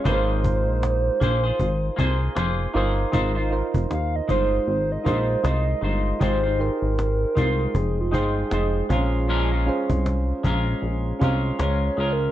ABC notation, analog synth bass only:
X:1
M:4/4
L:1/16
Q:"Swing 16ths" 1/4=78
K:Ab
V:1 name="Analog synth bass" clef=bass
A,,,3 B,,,3 B,,,2 A,,,2 C,,2 F,,,2 G,,,2 | A,,,3 F,,, E,,2 G,,,2 A,,,2 B,,,2 C,,2 G,,,2 | A,,,3 A,,,3 C,,2 F,,,2 G,,,2 F,,,2 B,,,2- | B,,,3 C,,3 B,,,2 B,,,2 C,,2 D,,2 D,,2 |]